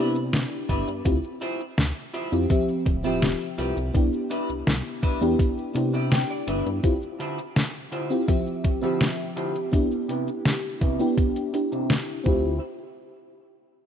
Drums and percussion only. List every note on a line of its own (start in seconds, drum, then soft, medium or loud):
0.16 cabasa medium
0.33 snare loud
0.33 closed hi-hat medium
0.33 cabasa soft
0.52 cabasa soft
0.69 kick medium
0.69 closed hi-hat medium
0.88 cabasa medium
1.05 kick loud
1.05 closed hi-hat medium
1.05 cabasa soft
1.24 cabasa soft
1.42 closed hi-hat medium
1.60 cabasa medium
1.78 snare loud
1.78 closed hi-hat medium
1.78 cabasa soft
1.96 cabasa soft
2.14 closed hi-hat medium
2.32 cabasa medium
2.50 kick loud
2.50 closed hi-hat medium
2.50 cabasa soft
2.69 cabasa soft
2.86 kick loud
2.86 closed hi-hat medium
3.05 cabasa medium
3.22 snare loud
3.22 closed hi-hat medium
3.22 cabasa soft
3.41 cabasa soft
3.59 closed hi-hat medium
3.77 cabasa medium
3.95 kick loud
3.95 closed hi-hat medium
3.95 cabasa soft
4.13 cabasa soft
4.31 closed hi-hat medium
4.49 cabasa medium
4.67 snare loud
4.67 closed hi-hat medium
4.67 cabasa soft
4.86 cabasa soft
5.03 kick loud
5.03 closed hi-hat medium
5.22 cabasa medium
5.39 kick loud
5.39 closed hi-hat medium
5.39 cabasa soft
5.58 cabasa soft
5.76 closed hi-hat medium
5.94 cabasa medium
6.12 snare loud
6.12 closed hi-hat medium
6.12 cabasa soft
6.30 cabasa soft
6.48 closed hi-hat medium
6.66 cabasa medium
6.84 kick loud
6.84 closed hi-hat medium
6.84 cabasa soft
7.02 cabasa soft
7.20 closed hi-hat medium
7.39 cabasa medium
7.56 snare loud
7.56 closed hi-hat medium
7.56 cabasa soft
7.75 cabasa soft
7.92 closed hi-hat medium
8.11 cabasa soft
8.28 kick loud
8.28 closed hi-hat medium
8.28 cabasa soft
8.47 cabasa soft
8.64 kick loud
8.64 closed hi-hat medium
8.83 cabasa medium
9.01 snare loud
9.01 closed hi-hat medium
9.01 cabasa soft
9.19 cabasa soft
9.37 closed hi-hat medium
9.55 cabasa medium
9.73 kick loud
9.73 closed hi-hat medium
9.73 cabasa soft
9.92 cabasa soft
10.09 closed hi-hat medium
10.28 cabasa medium
10.45 snare loud
10.45 closed hi-hat medium
10.45 cabasa soft
10.64 cabasa soft
10.81 kick loud
10.81 closed hi-hat medium
11.00 cabasa soft
11.18 kick loud
11.18 closed hi-hat medium
11.18 cabasa soft
11.36 closed hi-hat soft
11.36 cabasa soft
11.54 closed hi-hat medium
11.72 cabasa medium
11.90 snare loud
11.90 closed hi-hat medium
11.90 cabasa soft
12.09 cabasa soft
12.26 kick loud